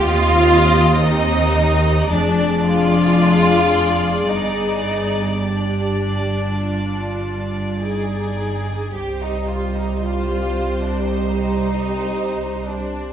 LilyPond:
<<
  \new Staff \with { instrumentName = "Violin section" } { \time 4/4 \key c \minor \tempo 4 = 56 ees''2 d''2~ | d''1 | c''1 | }
  \new Staff \with { instrumentName = "Viola section" } { \time 4/4 \key c \minor << { g'2 aes'2~ | aes'4 g'4 f'4 ees'4 | g'1 | } \\ { c'2 d'2 | b4 r2. | g1 | } >> }
  \new Staff \with { instrumentName = "Violin section" } { \time 4/4 \key c \minor f'4 ees'4 d'8 f'4. | ees'4 d'2 aes'4 | g'16 ees'16 f'16 ees'16 f'8. d'16 ees'4. d'8 | }
  \new Staff \with { instrumentName = "Cello section" } { \clef bass \time 4/4 \key c \minor ees,2 f,2 | g,1 | c,1 | }
  \new Staff \with { instrumentName = "Double bass section" } { \clef bass \time 4/4 \key c \minor ees,2 f,,2 | g,,1 | c,1 | }
>>